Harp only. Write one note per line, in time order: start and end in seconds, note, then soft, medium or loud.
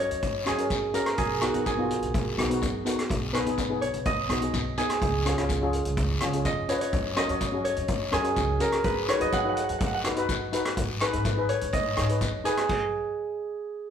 0.00 1.91 C#5 medium
0.00 1.29 D#5 medium
0.00 0.30 F5 medium
0.47 1.17 G#4 medium
0.94 3.06 A#4 medium
1.18 1.66 G#4 medium
1.42 1.53 F#4 medium
1.54 3.97 F#4 medium
1.66 3.94 G#4 medium
3.33 5.38 B4 medium
3.81 3.88 C#5 medium
4.06 5.84 D#5 medium
4.78 7.05 G#4 medium
6.45 7.16 D#5 medium
6.69 6.81 C#5 medium
6.81 7.64 C#5 medium
7.17 8.95 D#5 medium
7.64 9.09 C#5 medium
8.13 10.40 G#4 medium
8.61 8.90 A#4 medium
8.84 10.89 B4 medium
9.09 11.01 C#5 medium
9.21 11.00 D#5 medium
9.33 9.41 F#5 medium
9.41 9.49 F#5 medium
9.49 9.56 F#5 medium
9.56 9.64 F#5 soft
9.64 9.72 F#5 medium
9.72 9.78 F#5 soft
9.79 9.86 F#5 medium
9.87 9.94 F#5 medium
9.94 11.55 F#5 medium
11.02 13.07 B4 medium
11.49 13.40 C#5 medium
11.73 13.51 D#5 medium
12.45 13.90 G#4 medium